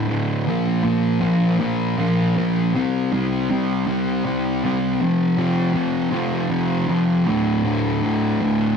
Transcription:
0.08 D2 A2 D3
0.47 A#2 F3 A#3
0.83 A#2 F3 A#3
1.20 A#2 F3 A#3
1.59 A#2 F3 A#3
1.97 A#2 F3 A#3
2.37 A#2 F3 A#3
2.74 C3 G3 C4
3.12 C3 G3 C4
3.50 C3 G3 C4
3.87 C3 G3 C4
4.24 C3 G3 C4
4.63 C3 G3 C4
5.01 F2 C3 F3
5.38 F2 C3 F3
5.74 F2 C3 F3
6.11 F2 C3 F3
6.50 F2 C3 F3
6.87 F2 C3 F3
7.26 D2 A2 D3
7.64 D2 A2 D3
8.02 D2 A2 D3
8.41 D2 A2 D3

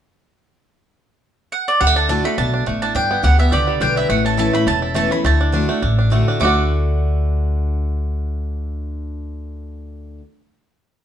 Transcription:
1.52 F#5
1.68 D5
1.80 D2 D3 G3 F#5
1.87 A3
1.96 D4 A5
2.09 D3 A3 D4 F#4 A5
2.24 A3 D4 F#4 B5
2.38 B1 B2 D4 A5
2.54 D4
2.66 A1 A2 A3
2.82 D4 A5
2.95 G1 G2 D4 G5
3.11 B3
3.23 D2 D3 G3 B3 G4 F#5
3.39 B3 G4 E5
3.52 C#2 D3 G4 D5
3.67 G3
3.80 B1 D3 G3 B3 D4 G4 G5
3.96 G3 E5
4.09 A1 A2 A3 F#5
4.25 C#4 A5
4.37 E3 A3 C#4 E4 A5
4.53 A3 C#4 E4 B5
4.66 E1 E2 C#4 A5
4.82 E4
4.94 E3 A3 C#4 E4 A5
5.11 C#4 E4 B5
5.24 D2 D3 A3 A5
5.41 D4
5.52 D3 A3 D4 F#4
5.69 A3 D4 F#4
5.82 A1 A2 D4
5.99 D4
6.10 D3 A3 D4 F#4
6.28 D4
6.40 D2 D3 A3 D4 F#4 D6
6.45 F#4 A4

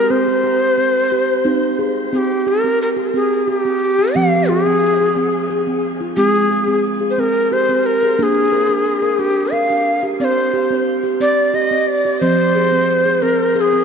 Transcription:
Already playing: G4 A#4
0.10 C4 C5
0.27 C4
0.44 G4
0.78 C4
1.12 G4
1.45 C4 D#4
1.79 G#4
2.13 C4 G#4
2.18 G4
2.47 G4 A#4
2.64 C4
2.82 A#4
2.97 G4
3.14 C4 G#4
3.48 G4 G#4
3.59 G4
3.65 C4
3.99 G4
4.15 F3 C4 F5
4.49 G#4
4.66 C4
5.00 G#4
5.16 C4
5.50 G#4
5.67 C4
6.01 F4
6.17 G#3 C4 G#4
6.50 G#4
6.68 C4
7.01 G#4
7.10 C5
7.18 C4 A#4
7.52 G4 C5
7.69 C4
7.86 A#4
8.03 G#4
8.19 A#3 D4 A#4
8.23 G#4
8.52 A#4
8.69 D4
9.02 A#4
9.19 D4 G4
9.52 A#4 F5
9.70 D4
10.03 G4
10.20 C4 D5
10.25 C5
10.53 G4
10.71 C4
11.03 G4
11.20 C4 D5
11.54 G4 D#5
11.71 C4
11.80 D#5
11.88 D5
12.05 G4
12.21 F3 C4 C5
12.55 G#4
12.72 C4
13.06 G#4
13.22 C4 A#4
13.55 G#4 A#4
13.61 G#4
13.73 C4

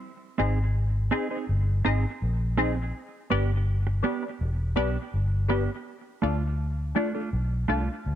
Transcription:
0.38 G#1 C4 D#4 G#4 C5 D#5
1.11 C4 D#4 G#4 C5 D#5
1.30 C4 D#4 G#4 C5 D#5
1.49 G1
1.84 G#1 C4 D#4 G#4 C5 D#5
2.22 A#1
2.57 C4 D#4 G#4 C5 D#5
2.77 muted clean electric guitar stroke
3.30 G1 B3 D4 G4 B4 D5
3.87 muted clean electric guitar stroke
4.03 B3 D4 G4 B4 D5
4.23 B4 D5
4.41 E1
4.76 B1 B3 D4 G4 B4 D5
5.14 G1
5.48 B3 D4 G4 B4 D5
6.22 D2 A3 D4 F4 A4 D5
6.95 A3 D4 F4 A4 D5
7.15 A3 D4 F4 A4 D5
7.33 B1
7.68 C2 A3 D4 F4 A4 D5
8.06 D2

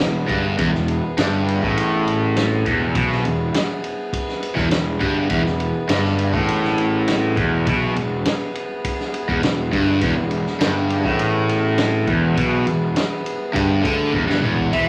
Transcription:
Already playing: B3 E4 G#4 B4
0.00 E1 E2, snare
0.28 G1 G2, kick, ride
0.58 E1 E2, kick, ride
0.73 E1 E2, snare
0.88 ride
1.17 G1 G2, snare, ride
1.48 ride
1.62 A1 A2, kick
1.77 ride
2.07 ride
2.36 snare, ride
2.66 E1 E2, kick, ride
2.95 B1 B2, kick, ride
3.12 snare
3.24 E1 E2, ride
3.54 snare, ride
3.84 ride
4.13 kick, ride
4.29 snare
4.43 ride
4.56 E1 E2, kick, snare
4.71 E1 E2, snare, ride
5.01 G1 G2, kick, ride
5.30 E1 E2, kick, ride
5.44 E1 E2, snare
5.60 ride
5.89 G1 G2, snare, ride
6.05 snare
6.18 ride
6.33 A1 A2, kick
6.48 ride
6.64 snare
6.78 ride
7.08 snare, ride
7.36 E1 E2, kick, ride
7.66 B1 B2, kick, ride
7.95 E1 E2, ride
8.25 snare, ride
8.55 ride
8.84 kick, ride
9.00 snare
9.14 ride
9.29 E1 E2, kick
9.43 E1 E2, snare, ride
9.73 G1 G2, kick, ride
10.01 E1 E2, kick, ride
10.16 E1 E2
10.31 ride
10.47 snare
10.60 G1 G2, snare, ride
10.90 ride
11.05 A1 A2, kick
11.19 ride
11.49 ride
11.78 snare, ride
12.07 E1 E2, kick, ride
12.36 B1 B2, kick, ride
12.65 E1 E2, ride
12.96 snare, ride
13.26 ride
13.53 G1 G2, kick, ride
13.83 D2 D3, kick, ride
14.12 E1 E2, kick
14.27 G1 G2, snare
14.42 E1 E2, mid tom
14.58 kick
14.70 E1 E3 B3 E4 A4 B4 E5, kick, crash

